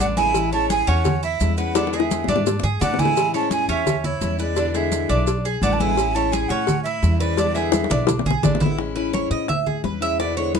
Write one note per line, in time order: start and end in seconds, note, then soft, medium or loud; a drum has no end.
0.00 0.82 A1 loud
0.00 0.16 D3 medium
0.00 0.17 G#3 medium
0.00 0.17 B3 medium
0.00 0.17 D4 medium
0.00 0.16 E4 medium
0.00 0.06 F#5 loud
0.00 high conga medium
0.00 maracas medium
0.17 0.34 D3 medium
0.17 0.35 G#3 medium
0.17 0.35 B3 medium
0.17 0.51 E4 medium
0.17 0.34 E4 medium
0.17 0.50 G#5 loud
0.17 high conga medium
0.17 maracas soft
0.34 0.52 E3 medium
0.34 0.52 G#3 medium
0.34 0.53 C#4 medium
0.34 0.52 E4 medium
0.34 cowbell loud
0.34 high conga soft
0.34 maracas medium
0.53 1.07 G#3 medium
0.53 1.06 C#4 medium
0.53 1.07 E4 medium
0.53 0.70 C#5 medium
0.53 0.69 A5 loud
0.53 high conga soft
0.53 maracas soft
0.70 0.87 G#4 medium
0.70 0.90 G#5 loud
0.70 cowbell medium
0.70 high conga medium
0.70 maracas medium
0.87 1.37 E2 loud
0.87 1.22 C#4 loud
0.87 1.23 F#5 loud
0.87 cowbell medium
0.87 high conga soft
0.87 maracas soft
1.05 muted steel-string acoustic guitar stroke medium
1.05 cowbell loud
1.05 high conga soft
1.05 low conga medium
1.05 maracas medium
1.23 1.57 E4 medium
1.23 1.56 E5 medium
1.23 high conga soft
1.23 maracas soft
1.40 2.23 E2 medium
1.40 1.57 E3 medium
1.40 1.58 G#3 medium
1.40 1.57 C#4 medium
1.40 1.57 E4 medium
1.40 cowbell medium
1.40 high conga medium
1.40 maracas medium
1.57 1.75 G#3 medium
1.57 1.75 C#4 medium
1.57 1.75 E4 medium
1.57 1.75 B4 medium
1.57 1.90 F#5 medium
1.57 maracas soft
1.75 1.92 B2 medium
1.75 1.92 D3 medium
1.75 1.93 G#3 medium
1.75 1.92 B3 medium
1.75 1.93 D4 medium
1.75 1.92 E4 medium
1.75 cowbell loud
1.75 high bongo loud
1.75 high conga soft
1.75 maracas medium
1.87 high bongo medium
1.93 2.45 D3 medium
1.93 2.46 G#3 medium
1.93 2.45 B3 medium
1.93 2.47 E4 medium
1.93 2.28 G#4 medium
1.93 2.43 E5 medium
1.93 cowbell medium
1.93 high conga soft
1.93 maracas soft
2.00 high bongo medium
2.11 cowbell medium
2.11 high conga loud
2.11 maracas medium
2.24 2.61 G#2 loud
2.24 low bongo medium
2.28 2.63 D4 loud
2.28 cowbell medium
2.28 high conga loud
2.28 maracas soft
2.36 low bongo medium
2.46 muted steel-string acoustic guitar stroke medium
2.46 cowbell loud
2.46 low bongo medium
2.46 maracas medium
2.59 2.80 G#2 medium
2.59 low bongo medium
2.59 low conga medium
2.64 2.81 G#4 medium
2.64 maracas soft
2.81 3.64 A2 medium
2.81 2.98 D3 medium
2.81 2.98 G#3 medium
2.81 2.99 B3 medium
2.81 2.99 D4 medium
2.81 2.98 E4 medium
2.81 3.01 F#5 loud
2.81 cowbell medium
2.81 low bongo medium
2.81 low conga medium
2.81 maracas medium
2.94 low bongo medium
2.99 3.15 D3 medium
2.99 3.15 G#3 medium
2.99 3.16 B3 medium
2.99 3.16 E4 medium
2.99 3.33 E4 medium
2.99 3.34 G#5 loud
2.99 low conga medium
2.99 maracas soft
3.05 low bongo medium
3.15 3.33 E3 medium
3.15 3.33 G#3 medium
3.15 3.33 C#4 medium
3.15 3.32 E4 medium
3.15 cowbell loud
3.15 maracas medium
3.34 3.86 G#3 medium
3.34 3.85 C#4 medium
3.34 3.87 E4 medium
3.34 3.51 C#5 medium
3.34 3.51 A5 medium
3.34 high conga soft
3.34 maracas soft
3.51 3.69 G#4 medium
3.51 3.68 G#5 loud
3.51 cowbell medium
3.51 high conga medium
3.51 maracas medium
3.69 4.18 E2 medium
3.69 4.03 C#4 loud
3.69 4.07 E5 loud
3.69 cowbell medium
3.69 high conga soft
3.69 maracas soft
3.86 muted steel-string acoustic guitar stroke medium
3.86 cowbell loud
3.86 high conga soft
3.86 low conga medium
3.86 maracas medium
4.04 4.39 E4 medium
4.04 4.39 C#5 medium
4.04 high conga soft
4.04 low conga medium
4.04 maracas soft
4.21 5.04 E2 medium
4.21 4.39 E3 medium
4.21 4.39 G#3 medium
4.21 4.39 C#4 medium
4.21 4.38 E4 medium
4.21 cowbell medium
4.21 high conga medium
4.21 maracas medium
4.39 4.57 G#3 medium
4.39 4.57 C#4 medium
4.39 4.56 E4 medium
4.39 4.57 B4 medium
4.39 4.78 D5 loud
4.39 maracas soft
4.56 4.74 B2 medium
4.56 4.74 D3 medium
4.56 4.74 G#3 medium
4.56 4.73 B3 medium
4.56 4.74 D4 medium
4.56 4.73 E4 medium
4.56 cowbell loud
4.56 high conga soft
4.56 maracas medium
4.74 5.27 D3 medium
4.74 5.28 G#3 medium
4.74 5.27 B3 medium
4.74 5.28 E4 medium
4.74 5.09 G#4 medium
4.74 5.28 E5 medium
4.74 cowbell medium
4.74 high conga soft
4.74 maracas soft
4.92 cowbell medium
4.92 high conga medium
4.92 maracas medium
5.09 5.59 B1 medium
5.09 5.44 D4 loud
5.09 cowbell medium
5.09 high conga soft
5.09 maracas soft
5.27 muted steel-string acoustic guitar stroke medium
5.27 cowbell loud
5.27 high conga soft
5.27 maracas medium
5.45 5.62 G#4 medium
5.45 high conga soft
5.45 maracas soft
5.62 6.44 A1 loud
5.62 5.79 D3 medium
5.62 5.80 G#3 medium
5.62 5.80 B3 medium
5.62 5.80 D4 medium
5.62 5.78 E4 medium
5.62 5.74 F#5 medium
5.62 cowbell medium
5.62 high conga medium
5.62 maracas medium
5.73 5.81 A5 medium
5.79 5.96 D3 medium
5.79 5.97 G#3 medium
5.79 5.97 B3 medium
5.79 5.97 E4 medium
5.79 6.14 E4 medium
5.79 6.16 G#5 loud
5.79 high conga medium
5.79 maracas soft
5.97 6.14 E3 medium
5.97 6.15 G#3 medium
5.97 6.15 C#4 medium
5.97 6.14 E4 medium
5.97 cowbell loud
5.97 high conga soft
5.97 maracas medium
6.15 6.68 G#3 medium
6.15 6.67 C#4 medium
6.15 6.69 E4 medium
6.15 6.33 C#5 medium
6.15 6.33 A5 loud
6.15 high conga soft
6.15 maracas soft
6.32 6.50 G#4 medium
6.32 6.50 G#5 loud
6.32 cowbell medium
6.32 high conga medium
6.32 maracas medium
6.48 6.99 A2 loud
6.48 6.84 C#4 loud
6.48 6.83 F#5 loud
6.48 cowbell medium
6.48 high conga soft
6.48 maracas soft
6.67 muted steel-string acoustic guitar stroke medium
6.67 cowbell loud
6.67 high conga soft
6.67 low conga medium
6.67 maracas medium
6.83 7.20 E4 medium
6.83 7.17 E5 medium
6.83 high conga soft
6.83 maracas soft
7.02 7.85 E2 loud
7.02 7.19 E3 medium
7.02 7.20 G#3 medium
7.02 7.20 C#4 medium
7.02 7.19 E4 medium
7.02 cowbell medium
7.02 high conga medium
7.02 maracas medium
7.19 7.38 G#3 soft
7.19 7.38 C#4 medium
7.19 7.37 E4 medium
7.19 7.38 B4 medium
7.19 7.56 D5 loud
7.19 maracas soft
7.37 7.55 B2 medium
7.37 7.55 D3 medium
7.37 7.56 G#3 medium
7.37 7.55 B3 medium
7.37 7.55 D4 medium
7.37 7.55 E4 medium
7.37 cowbell loud
7.37 high conga medium
7.37 maracas medium
7.55 8.08 D3 medium
7.55 8.08 G#3 medium
7.55 8.08 B3 medium
7.55 8.08 E4 medium
7.55 7.90 G#4 medium
7.55 8.08 E5 medium
7.55 cowbell medium
7.55 maracas soft
7.72 cowbell medium
7.72 high bongo loud
7.72 high conga medium
7.72 maracas medium
7.84 high bongo medium
7.90 8.23 B1 medium
7.90 8.25 D4 medium
7.90 cowbell medium
7.90 low conga loud
7.90 maracas soft
8.07 muted steel-string acoustic guitar stroke medium
8.07 cowbell loud
8.07 high bongo loud
8.07 low conga medium
8.07 maracas medium
8.19 low bongo loud
8.26 8.42 B1 medium
8.26 8.43 G#4 medium
8.26 low conga medium
8.26 maracas soft
8.31 low bongo medium
8.43 9.26 A1 medium
8.43 8.60 D3 medium
8.43 8.61 G#3 medium
8.43 8.61 B3 medium
8.43 8.61 D4 medium
8.43 8.60 E4 medium
8.43 cowbell medium
8.43 low bongo medium
8.43 low conga loud
8.43 maracas medium
8.55 low bongo medium
8.60 8.78 D3 medium
8.60 8.78 G#3 medium
8.60 8.79 B3 medium
8.60 8.78 E4 medium
8.60 low conga loud
8.60 maracas soft
8.66 low bongo medium
8.78 8.95 E3 medium
8.78 8.96 G#3 medium
8.78 8.96 C#4 medium
8.78 8.95 E4 medium
8.78 high bongo medium
8.96 9.49 G#3 medium
8.96 9.48 C#4 medium
8.96 9.49 E4 medium
8.96 9.13 B4 medium
8.96 high bongo soft
8.96 high conga soft
9.13 9.30 C#5 medium
9.13 high bongo medium
9.13 high conga medium
9.31 9.80 A2 medium
9.31 9.48 D#5 medium
9.31 high bongo soft
9.31 high conga soft
9.48 9.66 E5 medium
9.48 muted steel-string acoustic guitar stroke medium
9.48 high bongo medium
9.48 high conga soft
9.48 low conga medium
9.66 9.84 G#4 medium
9.66 high conga soft
9.66 low conga medium
9.84 10.60 E2 medium
9.84 10.01 E3 soft
9.84 10.02 G#3 soft
9.84 10.01 C#4 medium
9.84 10.00 E4 soft
9.84 10.01 B4 medium
9.84 high bongo soft
9.84 low bongo medium
9.84 high conga medium
10.01 10.19 G#3 medium
10.01 10.19 C#4 medium
10.01 10.18 E4 medium
10.01 10.19 E5 loud
10.01 high bongo soft
10.19 10.37 B2 medium
10.19 10.37 D3 medium
10.19 10.37 G#3 medium
10.19 10.36 B3 medium
10.19 10.35 E4 medium
10.19 10.37 D5 medium
10.19 high bongo medium
10.19 high conga soft
10.37 10.60 D3 medium
10.37 10.60 G#3 medium
10.37 10.60 B3 medium
10.37 10.60 E4 medium
10.37 10.54 C#5 medium
10.37 high bongo soft
10.37 high conga soft
10.55 10.60 B4 medium
10.55 high bongo medium
10.55 high conga loud